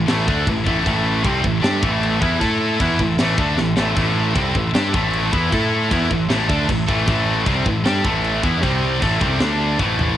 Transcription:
Already playing: A4 E5 C6 E6
0.06 A1 A2 E3 A3, snare, crash
0.25 D2 D3 A3 D4, kick
0.47 A1 A2 E3, kick, crash
0.64 A1 A2 E3 A3, kick
0.84 A1 A2 E3 A3, kick, crash
1.22 C2 C3 G3 C4, kick, crash
1.42 A1 A2 E3, kick
1.60 G3 D4 G4, crash
1.64 G2, snare
1.81 A1 A2 E3 A3, kick
2.03 crash
2.20 E2 E3 B3 E4, kick
2.40 A2 A3 E4 A4, kick, crash
2.80 E2 E3 B3 E4, kick, crash
2.99 A1 A2 E3, kick
3.18 A1 A2 E3 A3, snare, crash
3.38 D2 D3 A3 D4, kick
3.58 A1 A2 E3, snare
3.76 A1 A2 E3 A3, snare
3.96 A1 A2 E3 A3, kick, crash
4.34 C2 C3 G3 C4, kick, crash
4.55 A1 A2 E3, kick
4.74 G2 G3 D4 G4, snare, crash
4.92 A1 A2 E3 A3, kick
5.13 crash
5.32 E2 E3 B3 E4, kick
5.51 A2 A3 E4 A4, kick, crash
5.90 E2 E3 B3 E4, kick, crash
6.11 A1 A2 E3, kick
6.29 A1 A2 E3 A3, snare, crash
6.49 D2 D3 A3 D4, kick
6.68 A1 A2 E3, kick, crash
6.88 A1 A2 E3 A3, kick
7.07 A1 A2 E3 A3, kick, crash
7.46 C2 C3 G3 C4, kick, crash
7.66 A1 A2 E3, kick
7.84 G2 G3 D4 G4, snare, crash
8.04 A1 A2 E3 A3, kick
8.24 crash
8.42 E2 E3 B3 E4, kick
8.63 C2 C3 G3 C4 G4 C5 C6 G6, kick, crash
9.01 A1 A2 E3 A3 A4 E5 E6, kick, crash
9.19 C2 C3 G3 C4, kick
9.38 D2 D3 A3 D4 A5 D6, snare, crash
9.77 A1 A2 E3 A3 A4 C5 E5 C6, kick
9.99 floor tom

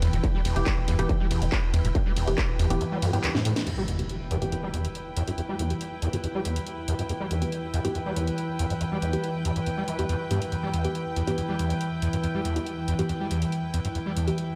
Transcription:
Already playing: E3 E4 B4 G5
0.02 E2, open hi-hat, ride
0.13 E1 F#2, closed hi-hat
0.24 E2, kick, closed hi-hat
0.35 G3
0.45 E1 E2, open hi-hat, ride
0.56 E1 D2 E3 B3 G4, closed hi-hat
0.66 kick, clap, closed hi-hat
0.77 E1
0.88 E2, open hi-hat, ride
0.99 E1 F#2 E3 B3 G4, closed hi-hat
1.09 E2, kick, closed hi-hat
1.20 G3
1.31 E1 E2, open hi-hat, ride
1.42 E1 D2, closed hi-hat
1.52 kick, clap, closed hi-hat
1.74 E2, open hi-hat, ride
1.85 E1 F#2, closed hi-hat
1.95 E2, kick, closed hi-hat
2.06 G3
2.16 E1 E2, open hi-hat, ride
2.27 E1 D2 E3 B3 G4, open hi-hat
2.38 kick, clap, closed hi-hat
2.49 E1
2.59 E2, open hi-hat, ride
2.70 E1 F#2 E3 B3 G4, closed hi-hat
2.81 E2, closed hi-hat
2.92 G3
3.02 F#2, open hi-hat, ride
3.13 G2 E3 B3 G4, closed hi-hat
3.24 D2, clap, closed hi-hat
3.35 A2, snare
3.45 A2, open hi-hat, ride
3.56 snare, closed hi-hat
3.66 E2 E3 E4, closed hi-hat, crash, impact
3.77 G3
3.83 B4
3.88 E2, closed hi-hat
3.99 D2 E3 B3 G4, closed hi-hat
4.08 G5, closed hi-hat
4.31 E2, closed hi-hat
4.42 F#2 E3 B3 G4, closed hi-hat
4.52 E2, closed hi-hat
4.63 G3
4.74 E2, closed hi-hat
4.85 D2, closed hi-hat
4.95 closed hi-hat
5.17 E2, closed hi-hat
5.28 F#2, closed hi-hat
5.38 E2, closed hi-hat
5.49 G3
5.59 E2, closed hi-hat
5.70 D2 E3 B3 G4, closed hi-hat
5.81 closed hi-hat
6.02 E2, closed hi-hat
6.13 F#2 E3 B3 G4, closed hi-hat
6.24 E2, closed hi-hat
6.35 G3
6.45 E2, closed hi-hat
6.56 D2, closed hi-hat
6.67 closed hi-hat
6.88 E2, closed hi-hat
6.99 F#2, closed hi-hat
7.09 E2, closed hi-hat
7.20 G3
7.31 E2, closed hi-hat
7.42 D2 E3 B3 G4, closed hi-hat
7.52 closed hi-hat
7.74 E2, closed hi-hat
7.85 F#2 E3 B3 G4, closed hi-hat
7.95 E2, closed hi-hat
8.06 G3
8.16 E2, closed hi-hat
8.27 D2, closed hi-hat
8.38 closed hi-hat
8.59 E2, closed hi-hat
8.70 F#2, closed hi-hat
8.81 E2, closed hi-hat
8.92 G3
9.02 E2, closed hi-hat
9.13 D2 E3 B3 G4, closed hi-hat
9.24 closed hi-hat
9.45 E2, closed hi-hat
9.56 F#2, closed hi-hat
9.66 E2, closed hi-hat
9.77 G3
9.88 E3, closed hi-hat
9.99 E2 E3 B3 G4, closed hi-hat
10.09 E2, closed hi-hat
10.31 G2 E3 B3 G4, closed hi-hat
10.42 closed hi-hat
10.52 E2, closed hi-hat
10.63 G3
10.74 E2, closed hi-hat
10.85 D2 E3 B3 G4, closed hi-hat
10.95 closed hi-hat
11.16 E2, closed hi-hat
11.27 F#2 E3 B3 G4, closed hi-hat
11.38 E2, closed hi-hat
11.49 G3
11.59 E2, closed hi-hat
11.70 D2, closed hi-hat
11.81 closed hi-hat
12.02 E2, closed hi-hat
12.13 F#2, closed hi-hat
12.24 E2, closed hi-hat
12.35 G3
12.45 E2, closed hi-hat
12.56 D2 E3 B3 G4, closed hi-hat
12.66 closed hi-hat
12.88 E2, closed hi-hat
12.99 F#2 E3 B3 G4, closed hi-hat
13.09 E2, closed hi-hat
13.20 G3
13.31 E2, closed hi-hat
13.42 D2, closed hi-hat
13.52 closed hi-hat
13.74 E2, closed hi-hat
13.85 F#2, closed hi-hat
13.95 E2, closed hi-hat
14.06 G3
14.17 E2, closed hi-hat
14.27 D2 E3 B3 G4, closed hi-hat
14.38 closed hi-hat

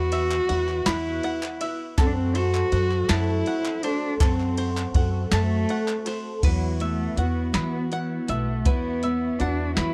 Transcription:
Already playing: E2 E3 F#3 B3 E4 F#4 B4 E5 F#5 B5
0.12 E5, clap, ride
0.31 clap
0.49 E2 F#3 B3 E4 F#4 F#5, ride
0.68 clap
0.86 E2 E3 F#3 B3 E4 F#4 B5, snare, clap, ride
1.23 F#5, ride
1.43 clap
1.61 B3 E4 F#4 E5, ride
1.98 F#2 F#3 A3 C4 F#4 A4, kick, clap, ride
2.06 D4
2.13 C4
2.35 F#4 C5, clap, ride
2.54 clap
2.72 F#2 A3 C4 F#4 A4 F#5, ride
2.91 clap
3.09 F#2 F#3 A3 C4 E4 F#4 A4 A5, snare, clap, ride
3.46 F#5, ride
3.65 clap
3.83 A3 C4 D4 F#4 A4 C5, ride
4.20 F#2 F#3 A3 C4 F#4 A4, kick, clap, ride
4.40 clap
4.57 C5, ride
4.77 clap
4.94 F#2 A3 C4 F#4 A4 F#5, kick, ride
5.31 F#2 F#3 A3 C4 F#4 A4 A5, snare, clap, ride
5.69 F#5, ride
5.88 clap
6.05 A3 C4 F#4 A4 C5, clap, ride
6.42 E2 E3 F#3 B3 E4 F#4 B4, kick, closed hi-hat, crash
6.80 A3 B3 E5, closed hi-hat
7.16 E2 F#3 B3 E4 F#4 F#5, closed hi-hat
7.53 E3 F#3 B3 E4 F#4 B5, snare, closed hi-hat
7.92 B3 E4 F#5, closed hi-hat
8.27 B1 A3 B3 E4 F#4 E5, closed hi-hat
8.65 E2 E3 F#3 B3 E4 F#4 B4, kick, closed hi-hat
9.03 B3 E5, closed hi-hat
9.39 E2 F#3 B3 D4 E4 F#4 F#5, closed hi-hat
9.76 E3 F#3 B3 E4 F#4 B5, snare, closed hi-hat

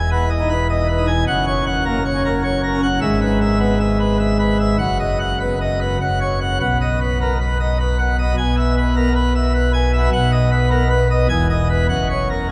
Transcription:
Already playing: E1 E2
0.12 B3 B4
0.30 D#5
0.40 D#4
0.49 B4
0.69 D#5
0.88 B4
0.98 D#4
1.07 G#5
1.27 F#1 F#2 F#5
1.47 C#5
1.66 F#5
1.85 A#3 A#4
2.05 C#5
2.15 C#4
2.25 A#4
2.43 C#5
2.63 A#4
2.74 C#4
2.83 F#5
3.01 G#1 G#2 E5
3.21 B4
3.41 E5
3.60 B3 B4
3.80 E5
3.99 B4
4.19 E5
4.39 B4
4.60 E5
4.79 F#1 F#2 F#5
5.00 D#5
5.20 F#5
5.40 B3 B4
5.61 D#5
5.81 B4
6.01 F#1 F#2 F#5
6.21 C#5
6.41 F#5
6.60 B1 B2 F#5
6.81 D#5
7.01 B4
7.21 B3 A#4
7.40 B4
7.60 D#5
7.80 B4
7.99 F#5
8.19 D#5
8.23 B3
8.38 B1 B2 G#5
8.57 E5
8.77 B4
8.96 B3 A#4
9.16 B4
9.35 E5
9.54 B4
9.73 G#5
9.93 E5
9.98 B3
10.13 B1 B2 F#5
10.32 D#5
10.52 B4
10.70 B3 A#4
10.90 B4
11.11 D#5
11.29 E1 E2 G#5
11.50 D#5
11.70 B4
11.89 F#1 F#2 F#5
12.10 C#5
12.30 A#4

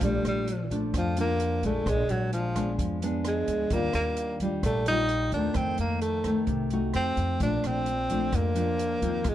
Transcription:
0.01 A#1 A#2 F3 G3 A3 D4, kick, closed hi-hat
0.25 A#1 G3, cross-stick, closed hi-hat
0.48 closed hi-hat
0.70 F3 A3 D4, kick, closed hi-hat
0.94 F2 F3, kick, cross-stick, closed hi-hat
1.17 F3 A#3 D4, closed hi-hat
1.40 closed hi-hat
1.63 A#1 G#3 A3 D4, kick, closed hi-hat
1.86 A#1 A#2 G#3, kick, cross-stick, closed hi-hat
2.09 A#1 F#3, closed hi-hat
2.33 F3, closed hi-hat
2.55 G#3 B3 D4, kick, cross-stick, closed hi-hat
2.79 F2 F3, kick, closed hi-hat
3.02 G#3 B3 D4, closed hi-hat
3.25 G#3, cross-stick, closed hi-hat
3.48 D2, kick, closed hi-hat
3.70 D#2 D#3 G3 A#3 D4 F4, kick, closed hi-hat
3.93 D#2 A#3, cross-stick, closed hi-hat
4.17 closed hi-hat
4.40 G3 D4 F4, kick, closed hi-hat
4.63 A#1 A#2 A3, kick, cross-stick, closed hi-hat
4.86 G3 D#4 F4, closed hi-hat
5.09 closed hi-hat
5.32 D#2 D#3 A3 C4 D4, kick, closed hi-hat
5.54 F2 C4, kick, cross-stick, closed hi-hat
5.78 F2 A#3, closed hi-hat
6.01 A3, closed hi-hat
6.24 D#3 A3 C4, kick, cross-stick, closed hi-hat
6.47 C2 C3, kick, closed hi-hat
6.70 A3 D#4 F#4, closed hi-hat
6.94 F2 C4, cross-stick, closed hi-hat
7.17 F2, kick, closed hi-hat
7.40 A#1 A#2 F3 A3 D4, kick, closed hi-hat
7.64 A#1 C4, cross-stick, closed hi-hat
7.86 closed hi-hat
8.09 F3 A3 D4, kick, closed hi-hat
8.32 F2 A#3, kick, cross-stick, closed hi-hat
8.55 F3 D4, closed hi-hat
8.79 closed hi-hat
9.02 D#2 F3 C4 D#4, kick, closed hi-hat
9.24 G#1 G#2, kick, cross-stick, closed hi-hat
9.29 G#3

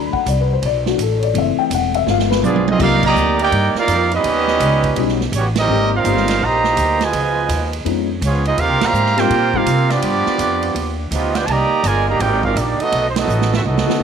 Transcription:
Already playing: D2 F#3 A3 D4 B5
0.13 F#5, muted upright bass stroke, kick
0.26 C2 D5, kick, hi-hat pedal, ride
0.41 B4
0.53 C5
0.62 B1 D5, kick, ride
0.86 F#3 A3 D4 F#4, snare
0.98 A1, kick, hi-hat pedal, ride
1.02 A4
1.18 C#5
1.23 D5, ride
1.34 F#1 E3 A3 C4, kick, ride
1.38 E5
1.57 G5, muted upright bass stroke
1.70 E1, kick, hi-hat pedal, ride
1.75 F#5
1.94 E5, ride
2.07 G1 F3 G#3 B3 F5, snare
2.19 snare
2.30 B4, snare
2.43 B1 F3 B3 D4 F4 G#4 D5, hi-hat pedal, high tom
2.56 high tom
2.67 C4 D#4 F4 G#4 D#5, high tom
2.78 C2 F3 G3 A#3 C4 D#4 F4 G4 A#4 D5 E5 F5, kick, crash
3.03 D#3 G3 A#3 G4 D5 D#5 A#5, kick, crash
3.15 D2, hi-hat pedal
3.39 A#3 D#4 G4 A#4 D5 G5, ride
3.52 G2, kick, ride
3.74 G3 A#3 F4, muted upright bass stroke, snare
3.79 D#4 A#4 D5 F5
3.87 F2, kick, hi-hat pedal, ride
4.11 G3 B3 D#4 B4 D#5, ride
4.16 C#4 G4
4.24 D#2, kick, ride
4.47 snare
4.60 C#2, kick, hi-hat pedal, ride
4.83 kick, ride
4.96 B1 G3 B3 C#4 D#4 F#4, kick, ride
5.08 snare
5.21 snare
5.32 A1 C#3 G3 B3 C#4 C#5, kick, hi-hat pedal, ride
5.36 F#4 G4
5.55 G3 C4 D#4 G4 A#4 D#5, snare, ride
5.68 G#1 G#3 A#3 C4 D#4 G4
5.94 G3 C4 D#4 F4 A#4 C5 F5
6.04 G1 G#3 A#3 C4 D#4 G4, kick, hi-hat pedal, ride
6.17 snare
6.28 snare, ride
6.40 A#1 D#3 G3 A#3 G4 C5 D#5 A#5, kick
6.64 snare
6.76 D2, kick, hi-hat pedal, ride
7.00 B2 F3 G#3 F4 B4 D#5 G#5, snare, ride
7.13 C#2, kick, ride
7.49 D#2, kick, hi-hat pedal, ride
7.73 ride
7.84 F2 G#3 B3 C#4 D#4 F4, kick, ride
8.21 C#2 F3 G#3 C#4, kick, hi-hat pedal, ride
8.25 B3 F4 G#4 C#5
8.45 G#3 B3 D#4 F4 G#4 D#5, ride
8.57 D#2 A#3 C4 F4 G4 A#4 F5, kick, ride
8.69 C2
8.81 A#1 C3 G3 A#3 G4 C5, snare, ride
8.85 F5 A#5
8.93 G#2, hi-hat pedal
9.06 snare
9.16 G3 A#3 C4 D#4 F4 G4 A#4 C5 G5, snare, ride
9.30 A#2, kick, ride
9.53 G3 A#3 C4 D#4 F4 G4 A#4 F5, kick
9.66 C3, kick, hi-hat pedal, ride
9.90 F3 B3 D4 F4 G4 D5, snare, ride
10.02 G2, kick, ride
10.26 muted upright bass stroke, snare
10.38 F2, kick, hi-hat pedal, ride
10.63 ride
10.75 D#2, kick, ride
11.11 D2 F3 B3 D#4 F4 G4 D#5, kick, hi-hat pedal, ride
11.34 B3 D4 F4 G4 B4 D5 G5, snare, ride
11.45 C2 D#3 G3 A#3 A5, kick, ride
11.50 G4 D5 D#5 A#5
11.70 muted upright bass stroke
11.83 G1 G#3 F4 A#4 D5 G#5, kick, hi-hat pedal, ride
12.07 D#3 G3 A#3 G4 D5 D#5 A#5
12.19 G#1 A#3 D#4 G4 A#4 D5 G5, kick, ride
12.43 G3 A#3 D#4 F4 A#4 D5 F5, kick
12.56 A#1 G3 A#3 D4 D#4 G4 D5, kick, hi-hat pedal, ride
12.79 F#3 A3 B3 D#4 F#4 A4 D#5, muted upright bass stroke, ride
12.92 B1, kick, ride
13.09 C5
13.16 F#3 A3 B3 D#4 F#4 A4 D#5, snare, ride
13.28 A1, hi-hat pedal
13.42 snare
13.52 C4 E4 F#4 A4 E5, snare
13.63 C2 F#3 A3 B3 D#4 F#4 A4 D#5, mid tom
13.78 snare
13.87 F#3 A3 B3 D#4 F#4, muted upright bass stroke, snare
14.00 B1

